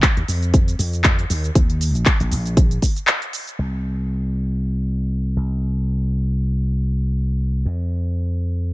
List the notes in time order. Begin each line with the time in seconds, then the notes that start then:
0.03 kick, clap, closed hi-hat, shaker
0.17 D#2, closed hi-hat
0.28 F2, open hi-hat, shaker
0.43 closed hi-hat, shaker
0.54 kick, closed hi-hat, shaker
0.68 closed hi-hat, shaker
0.79 F2, open hi-hat, shaker
0.93 closed hi-hat, shaker
1.04 kick, clap, closed hi-hat, shaker
1.19 closed hi-hat
1.30 D#2, open hi-hat, shaker
1.44 closed hi-hat, shaker
1.55 D#2, kick, closed hi-hat, shaker
1.70 closed hi-hat
1.81 open hi-hat, shaker
1.95 A#1, closed hi-hat, shaker
2.06 kick, clap, closed hi-hat, shaker
2.20 A#1, closed hi-hat, shaker
2.32 A#1, open hi-hat, shaker
2.46 closed hi-hat, shaker
2.57 kick, closed hi-hat, shaker
2.71 closed hi-hat, shaker
2.82 kick, open hi-hat, shaker
2.96 closed hi-hat, shaker
3.07 clap, closed hi-hat, shaker
3.22 closed hi-hat
3.33 open hi-hat, shaker
3.47 closed hi-hat, shaker
3.59 C2
5.37 C2
7.65 F2